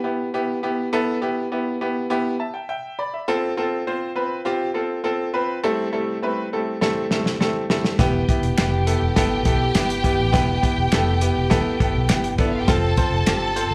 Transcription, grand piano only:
0.04 0.27 B3 medium
0.04 0.27 E4 medium
0.04 0.27 G4 medium
0.34 0.57 B3 medium
0.34 0.57 E4 medium
0.34 0.57 G4 loud
0.63 0.86 B3 medium
0.63 0.86 E4 medium
0.63 0.86 G4 loud
0.93 1.16 B3 loud
0.93 1.16 E4 loud
0.93 1.16 A4 loud
1.22 1.45 B3 medium
1.22 1.45 E4 medium
1.22 1.45 G4 loud
1.52 1.74 B3 medium
1.52 1.75 E4 medium
1.52 1.75 G4 medium
1.81 2.04 B3 medium
1.81 2.04 E4 medium
1.81 2.04 G4 medium
2.10 2.33 B3 loud
2.10 2.33 E4 loud
2.10 2.33 G4 loud
2.40 2.67 E5 medium
2.40 2.54 A5 medium
2.54 2.68 G5 medium
2.69 2.97 E5 medium
2.69 2.97 G5 medium
2.99 3.13 D5 medium
2.99 3.26 B5 medium
3.14 3.42 E5 medium
3.28 3.51 C4 loud
3.28 3.51 F4 loud
3.28 3.51 A4 loud
3.57 3.80 C4 loud
3.57 3.80 F4 medium
3.57 3.80 A4 loud
3.87 4.10 C4 medium
3.87 4.10 F4 medium
3.87 4.10 C5 medium
4.15 4.39 C4 medium
4.15 4.39 F4 medium
4.15 4.39 B4 medium
4.45 4.68 C4 loud
4.45 4.69 F4 loud
4.45 4.69 G4 loud
4.74 4.98 C4 medium
4.74 4.98 F4 medium
4.74 4.98 A4 loud
5.04 5.27 C4 medium
5.04 5.27 F4 medium
5.04 5.27 A4 loud
5.33 5.57 C4 medium
5.33 5.57 F4 medium
5.33 5.57 B4 loud
5.63 5.86 G3 loud
5.63 5.87 A3 loud
5.63 5.86 C4 loud
5.63 5.86 E4 loud
5.63 5.86 A4 loud
5.92 6.16 G3 loud
5.92 6.16 A3 medium
5.92 6.16 C4 medium
5.92 6.16 E4 medium
5.92 6.16 A4 loud
6.22 6.45 G3 medium
6.22 6.45 A3 medium
6.22 6.45 C4 medium
6.22 6.45 E4 medium
6.22 6.46 B4 loud
6.53 6.75 G3 medium
6.53 6.75 A3 medium
6.53 6.75 C4 medium
6.53 6.75 E4 medium
6.53 6.75 A4 loud
6.81 7.04 G3 loud
6.81 7.04 A3 loud
6.81 7.04 C4 loud
6.81 7.04 E4 loud
6.81 7.04 A4 loud
7.12 7.34 G3 medium
7.12 7.34 A3 medium
7.12 7.34 C4 medium
7.12 7.34 E4 medium
7.12 7.34 A4 medium
7.40 7.63 G3 medium
7.40 7.63 A3 medium
7.40 7.63 C4 medium
7.40 7.63 E4 medium
7.40 7.63 A4 loud
7.70 7.93 G3 medium
7.70 7.93 A3 medium
7.70 7.93 C4 medium
7.70 7.93 E4 medium
7.70 7.93 A4 loud
7.99 8.22 B3 loud
7.99 8.22 E4 loud
7.99 8.22 G4 loud
8.29 8.51 B3 medium
8.29 8.51 E4 medium
8.29 8.52 G4 loud
8.58 8.80 B3 medium
8.58 8.81 E4 medium
8.58 8.81 G4 loud
8.87 9.10 B3 medium
8.87 9.10 E4 medium
8.87 9.10 A4 medium
9.16 9.39 B3 loud
9.16 9.39 E4 loud
9.16 9.39 A4 loud
9.45 9.68 B3 medium
9.45 9.68 E4 medium
9.45 9.69 A4 loud
9.75 9.98 B3 loud
9.75 9.98 E4 medium
9.75 9.98 G4 loud
10.03 10.27 B3 medium
10.03 10.27 E4 medium
10.03 10.27 G4 loud
10.32 10.56 B3 loud
10.32 10.56 E4 loud
10.32 10.56 G4 loud
10.62 10.85 B3 medium
10.62 10.86 E4 medium
10.62 10.86 G4 loud
10.92 11.15 B3 medium
10.92 11.15 E4 medium
10.92 11.15 A4 loud
11.21 11.44 B3 medium
11.21 11.44 E4 medium
11.21 11.45 G4 medium
11.50 11.73 B3 loud
11.50 11.73 E4 loud
11.50 11.73 A4 loud
11.80 12.03 B3 medium
11.80 12.03 E4 medium
11.80 12.03 A4 medium
12.09 12.32 B3 medium
12.09 12.32 E4 medium
12.09 12.32 G4 loud
12.38 12.62 B3 loud
12.38 12.62 E4 medium
12.38 12.62 A4 loud
12.68 12.91 C4 loud
12.68 12.91 F4 loud
12.68 12.91 A4 loud
12.97 13.20 C4 loud
12.97 13.20 F4 medium
12.97 13.21 C5 loud
13.26 13.50 C4 medium
13.26 13.50 F4 medium
13.26 13.50 G4 loud
13.56 13.74 C4 medium
13.56 13.74 F4 medium
13.56 13.74 C5 loud

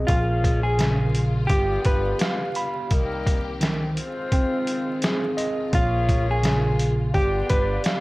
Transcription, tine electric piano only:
0.00 0.10 D#5 medium
0.09 1.50 A#1 medium
0.78 1.49 C#3 medium
1.50 2.91 G4 loud
2.21 2.91 F5 loud
2.57 2.91 B5 medium
2.92 3.98 C2 medium
3.61 3.96 D#3 medium
4.33 5.74 C4 loud
5.03 5.74 G#4 loud
5.37 5.73 D#5 loud
5.74 7.15 A#1 medium
6.43 7.14 C#3 medium
7.14 8.00 G4 loud
7.86 8.00 F5 medium

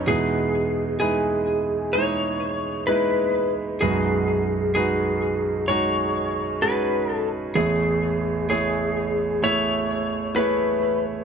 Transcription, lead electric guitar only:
0.08 0.98 G#4 medium
1.00 1.96 G#4 medium
1.93 2.86 C#5 medium
2.87 3.53 B4 medium
3.81 4.74 G#4 medium
4.75 5.64 G#4 medium
5.68 6.62 C#5 medium
6.62 7.11 B4 medium
7.11 7.28 A4 medium
7.55 8.48 G#4 medium
8.50 9.46 G#4 medium
9.44 10.35 C#5 medium
10.36 11.03 B4 medium

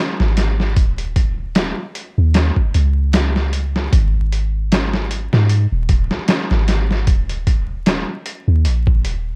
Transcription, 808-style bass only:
0.20 0.78 G#1 medium
0.77 1.73 D#1 medium
2.18 2.51 D#2 loud
2.75 3.89 C#2 medium
3.93 5.29 G#1 loud
5.33 5.67 G#2 loud
5.72 5.87 D#1 loud
5.90 6.09 D#1 medium
6.51 7.09 G#1 medium
7.08 8.04 D#1 medium
8.48 8.68 D#2 loud
8.67 9.07 A#1 medium
9.05 9.36 D#1 medium

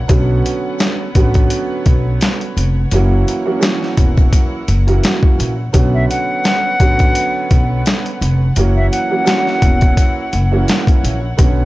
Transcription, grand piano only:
0.08 1.07 D3 medium
0.08 1.07 F#3 medium
0.08 1.07 B3 medium
0.08 1.07 C#4 medium
0.08 1.07 F#4 loud
1.15 2.79 D3 loud
1.15 2.79 F#3 medium
1.15 2.79 B3 medium
1.15 2.79 C#4 medium
1.15 2.80 F#4 loud
2.93 3.42 E3 loud
2.93 3.42 F#3 medium
2.93 3.43 A#3 medium
2.93 3.43 C#4 medium
2.93 3.43 F#4 loud
3.45 3.58 E3 medium
3.45 3.58 F#3 medium
3.45 3.58 A#3 medium
3.45 3.59 C#4 medium
3.45 3.59 F#4 loud
3.59 4.59 E3 loud
3.59 4.59 F#3 medium
3.59 4.59 A#3 medium
3.59 4.59 C#4 medium
3.59 4.60 F#4 loud
4.87 5.52 E3 loud
4.87 5.52 F#3 medium
4.87 5.52 A#3 medium
4.87 5.52 C#4 medium
4.87 5.52 F#4 loud
5.72 6.71 D3 loud
5.72 6.72 F#3 medium
5.72 6.72 B3 medium
5.72 6.72 C#4 medium
5.72 6.72 F#4 loud
6.80 8.43 D3 loud
6.80 8.44 F#3 medium
6.80 8.44 B3 medium
6.80 8.44 C#4 medium
6.80 8.44 F#4 loud
8.57 9.07 E3 loud
8.57 9.07 F#3 loud
8.57 9.07 A#3 medium
8.57 9.07 C#4 medium
8.57 9.07 F#4 loud
9.10 9.22 E3 medium
9.10 9.23 F#3 medium
9.10 9.23 A#3 medium
9.10 9.23 C#4 medium
9.10 9.24 F#4 medium
9.24 10.23 E3 loud
9.24 10.24 F#3 medium
9.24 10.24 A#3 medium
9.24 10.24 C#4 medium
9.24 10.24 F#4 loud
10.51 11.16 E3 loud
10.51 11.16 F#3 medium
10.51 11.17 A#3 medium
10.51 11.17 C#4 medium
10.51 11.17 F#4 loud
11.37 11.65 D3 medium
11.37 11.65 F#3 medium
11.37 11.65 B3 medium
11.37 11.65 C#4 medium
11.37 11.65 F#4 loud

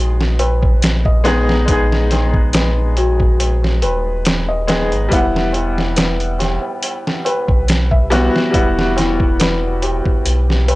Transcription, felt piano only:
0.00 1.69 D#4 medium
0.00 2.97 F#4 medium
0.00 0.40 B4 medium
0.40 1.03 B4 medium
1.05 1.24 D#5 medium
1.26 1.48 B3 medium
1.69 2.10 D#4 medium
2.12 2.53 D#4 medium
2.55 2.95 B4 medium
2.97 3.19 F#4 medium
3.83 4.46 B4 medium
4.48 4.67 D#5 medium
4.68 4.90 B3 medium
5.12 5.52 E4 medium
5.54 5.95 E4 medium
5.97 6.38 B4 medium
6.39 6.61 G4 medium
7.26 7.89 B4 medium
7.91 8.10 E5 medium
8.12 8.33 B3 medium
8.54 8.95 E4 medium
8.97 9.38 E4 medium
9.40 9.81 B4 medium
9.83 10.04 G4 medium
10.68 10.75 B4 medium

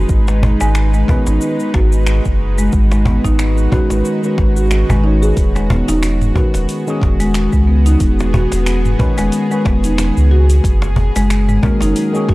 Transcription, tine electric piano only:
0.00 1.04 D#3 medium
0.00 1.05 G#3 medium
0.00 1.05 C#4 medium
0.00 1.06 F#4 medium
0.00 1.06 B4 medium
1.08 1.55 D#3 medium
1.08 1.56 G#3 medium
1.08 1.56 C#4 medium
1.08 1.56 F#4 medium
1.08 1.56 B4 medium
3.72 4.19 D#3 medium
3.72 4.19 G#3 medium
3.72 4.20 C#4 medium
3.72 4.20 F#4 medium
3.72 4.20 B4 loud
4.22 5.00 D#3 medium
4.22 5.01 G#3 medium
4.22 5.02 C#4 medium
4.22 5.02 F#4 medium
4.22 5.02 B4 medium
5.03 6.32 D#3 medium
5.03 6.32 G#3 medium
5.03 6.33 C#4 medium
5.03 6.33 F#4 medium
5.07 6.34 C#5 medium
6.35 6.83 D#3 medium
6.35 6.83 G#3 medium
6.35 6.83 C#4 medium
6.35 6.83 F#4 medium
6.35 6.84 B4 medium
6.86 8.96 D#3 medium
6.86 8.96 G#3 medium
6.86 8.97 C#4 medium
6.86 8.97 F#4 medium
6.86 8.98 G#4 loud
8.98 9.46 D#3 medium
8.98 9.46 G#3 medium
8.98 9.47 C#4 medium
8.98 9.47 F#4 medium
8.98 9.47 B4 loud
9.49 10.62 D#3 medium
9.49 10.62 G#3 medium
9.49 10.63 C#4 medium
9.49 10.63 F#4 medium
9.53 10.64 B4 medium
11.62 12.10 D#3 medium
11.62 12.10 G#3 medium
11.62 12.10 C#4 medium
11.62 12.11 F#4 medium
11.62 12.11 A#4 medium
12.12 12.34 D#3 medium
12.12 12.34 G#3 medium
12.12 12.34 C#4 medium
12.12 12.34 F#4 medium
12.16 12.34 G#4 loud

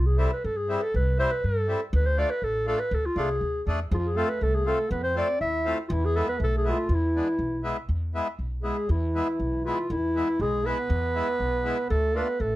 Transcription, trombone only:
3.91 4.17 F3 medium
4.16 4.40 A3 medium
4.41 4.64 A3 medium
4.66 4.91 A3 medium
4.90 5.05 B3 medium
5.03 5.42 C4 medium
5.40 5.78 E4 medium
5.91 6.29 E3 medium
6.28 6.40 B3 medium
6.38 6.89 A3 medium
6.90 7.61 E3 medium
8.64 8.91 G#3 medium
8.90 9.89 E3 medium
9.89 10.37 E3 medium
10.40 10.67 G#3 medium
10.66 11.93 B3 medium
11.91 12.17 A3 medium
12.15 12.42 B3 medium
12.41 12.56 A3 medium

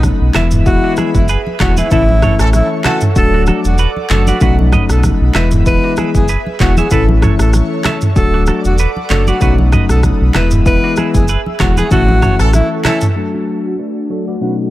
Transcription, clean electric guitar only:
0.35 0.47 B4 medium
0.35 0.47 E5 medium
0.84 0.94 D4 medium
0.84 0.93 F#4 medium
0.98 1.10 E4 medium
0.98 1.09 G#4 medium
1.29 1.41 G#4 medium
1.29 1.40 B4 medium
1.60 1.72 A4 medium
1.60 1.72 C#5 medium
1.78 1.87 G#4 medium
1.78 1.87 B4 medium
1.92 2.04 E4 medium
1.92 2.03 A4 medium
2.23 2.35 A4 medium
2.23 2.34 C#5 medium
2.86 2.97 F#4 medium
2.86 2.97 A4 medium
3.34 3.44 D4 medium
3.34 3.43 F#4 medium
3.48 3.60 F#4 medium
3.48 3.59 A4 medium
3.79 3.91 F#4 medium
3.79 3.90 B4 medium
4.10 4.22 A4 medium
4.10 4.22 C#5 medium
4.28 4.37 B4 medium
4.28 4.37 D5 medium
4.42 4.54 F#4 medium
4.42 4.53 B4 medium
4.73 4.85 B4 medium
4.73 4.84 D#5 medium
5.36 5.47 B4 medium
5.36 5.47 E5 medium
5.84 5.94 D4 medium
5.84 5.93 F#4 medium
5.98 6.10 E4 medium
5.98 6.09 G#4 medium
6.29 6.41 G#4 medium
6.29 6.40 B4 medium
6.61 6.72 A4 medium
6.61 6.72 C#5 medium
6.78 6.87 C#5 medium
6.78 6.87 E5 medium
6.92 7.04 E4 medium
6.92 7.03 B4 medium
7.23 7.35 A4 medium
7.23 7.34 C#5 medium
7.86 7.97 C#5 medium
7.86 7.97 E5 medium
8.34 8.44 D4 medium
8.34 8.43 F#4 medium
8.48 8.60 F#4 medium
8.48 8.59 A4 medium
8.80 8.91 F#4 medium
8.80 8.91 B4 medium
9.11 9.22 A4 medium
9.11 9.22 C#5 medium
9.28 9.37 B4 medium
9.28 9.37 D5 medium
9.42 9.54 F#4 medium
9.42 9.53 B4 medium
9.73 9.85 B4 medium
9.73 9.84 D#5 medium
10.36 10.47 B4 medium
10.36 10.47 E5 medium
10.84 10.94 D4 medium
10.84 10.93 F#4 medium
10.98 11.10 E4 medium
10.98 11.09 G#4 medium
11.29 11.41 G#4 medium
11.29 11.40 B4 medium
11.60 11.72 A4 medium
11.60 11.72 C#5 medium
11.78 11.87 G#4 medium
11.78 11.87 B4 medium
11.92 12.03 E4 medium
11.92 12.03 A4 medium
12.23 12.35 A4 medium
12.23 12.34 C#5 medium
12.86 12.97 C#5 medium
12.86 12.97 E5 medium
13.34 13.44 D4 medium
13.34 13.43 F#4 medium
13.48 13.60 F#4 medium
13.48 13.59 A4 medium
13.79 13.91 F#4 medium
13.79 13.90 B4 medium
14.11 14.22 A4 soft
14.11 14.22 C#5 medium
14.28 14.37 B4 medium
14.28 14.37 D5 medium
14.42 14.53 F#4 medium
14.42 14.53 B4 medium

